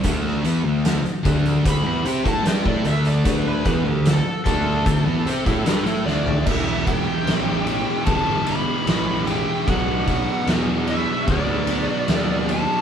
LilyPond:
<<
  \new Staff \with { instrumentName = "Lead electric guitar" } { \time 4/4 \key e \minor \tempo 4 = 75 r2 b''16 b''16 g''16 a''16 g''16 d''16 e''16 d''16 | b'16 b'16 b'16 g'16 a'8 a'2 d''8 | e''8 g''4. a''8 b''4 g''8 | fis''4 r8 e''8 d''4. a''8 | }
  \new Staff \with { instrumentName = "Distorted electric guitar" } { \time 4/4 \key e \minor <d a d'>8 <e b>16 <d a>8 r16 <d a d'>8 <d a>16 <e b>16 <c' g'>16 <a e'>16 <g d'>16 <a e'>16 <d a d'>8 | <d a d'>8 <e b>16 <d a>8 r16 <d a d'>8 <d a>16 <e b>16 <c' g'>16 <a e'>16 <g d'>16 <a e'>16 <d a d'>8 | <e b e' g'>8 <e b e' g'>8 <e b e' g'>8 <e b e' g'>8 <e b e' g'>8 <e b e' g'>8 <e b e' g'>8 <e b e' g'>8 | <b, fis b d' fis'>8 <b, fis b d' fis'>8 <b, fis b d' fis'>8 <b, fis b d' fis'>8 <b, fis b d' fis'>8 <b, fis b d' fis'>8 <b, fis b d' fis'>8 <b, fis b d' fis'>8 | }
  \new Staff \with { instrumentName = "Distorted electric guitar" } { \time 4/4 \key e \minor <d a d'>8 <e b>16 <d a>8 r16 <d a d'>8 <d a>16 <e b>16 <c' g'>16 <a e'>16 <g d'>16 <a e'>16 <d a d'>8 | <d a d'>8 <e b>16 <d a>8 r16 <d a d'>8 <d a>16 <e b>16 <c' g'>16 <a e'>16 <g d'>16 <a e'>16 <d a d'>8 | <e, b, e>2 <e, b, e>2 | <b, fis b>2 <b, fis b>2 | }
  \new Staff \with { instrumentName = "Distorted electric guitar" } { \time 4/4 \key e \minor <d a d'>8 <e b>16 <d a>8 r16 <d a d'>8 <d a>16 <e b>16 <c' g'>16 <a e'>16 <g d'>16 <a e'>16 <d a d'>8 | <d a d'>8 <e b>16 <d a>8 r16 <d a d'>8 <d a>16 <e b>16 <c' g'>16 <a e'>16 <g d'>16 <a e'>16 <d a d'>8 | <e, b, e>4. <e, b, e>2~ <e, b, e>8 | <b, fis b>4. <b, fis b>2~ <b, fis b>8 | }
  \new Staff \with { instrumentName = "Picked electric bass" } { \clef bass \time 4/4 \key e \minor d,8 e,16 d,8 r16 d,8 d,16 e,16 c16 a,16 g,16 a,16 d,8 | d,8 e,16 d,8 r16 d,8 d,16 e,16 c16 a,16 g,16 a,16 d,8 | e,,4 a,,4 g,,4 a,,4 | b,,4 e,4 d,4 dis,4 | }
  \new DrumStaff \with { instrumentName = "Drums" } \drummode { \time 4/4 <hh bd>16 sn16 hh8 <hh sn>16 hh16 <hh bd>16 hh16 <hh bd>8 hh16 <hh bd>16 <hh sn>16 bd16 hh16 hh16 | <hh bd>8 <hh bd>8 <hh sn>8 <hh bd sn>8 <hh bd>8 hh16 <hh bd sn>16 <hh sn>16 hh16 sn16 tomfh16 | <cymc bd>8 <bd cymr>8 <cymr sn>8 cymr8 <bd cymr>8 cymr8 <cymr sn>8 <cymr sn>8 | <bd cymr>8 <bd cymr>8 <cymr sn>8 cymr8 <bd cymr>8 cymr8 <cymr sn>8 cymr8 | }
>>